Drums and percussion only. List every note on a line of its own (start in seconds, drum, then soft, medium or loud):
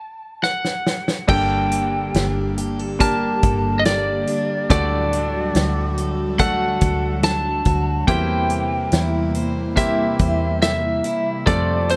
0.43 snare soft
0.65 snare medium
0.87 snare medium
1.08 snare medium
1.29 kick loud
1.29 crash medium
1.72 closed hi-hat medium
2.14 snare medium
2.14 closed hi-hat medium
2.58 closed hi-hat medium
3.00 kick medium
3.00 closed hi-hat medium
3.43 kick medium
3.43 closed hi-hat medium
3.85 snare loud
3.85 closed hi-hat medium
4.27 closed hi-hat medium
4.70 kick loud
4.70 closed hi-hat medium
5.13 closed hi-hat medium
5.55 snare loud
5.55 closed hi-hat medium
5.98 closed hi-hat medium
6.39 kick medium
6.39 closed hi-hat medium
6.81 kick medium
6.81 closed hi-hat medium
7.23 snare loud
7.23 closed hi-hat medium
7.65 kick medium
7.65 closed hi-hat medium
8.08 kick loud
8.08 closed hi-hat medium
8.50 closed hi-hat medium
8.92 snare medium
8.92 closed hi-hat medium
9.35 closed hi-hat medium
9.77 kick medium
9.77 closed hi-hat medium
10.19 kick medium
10.19 closed hi-hat medium
10.62 snare loud
10.62 closed hi-hat medium
11.04 closed hi-hat medium
11.47 kick loud
11.47 closed hi-hat medium
11.89 closed hi-hat medium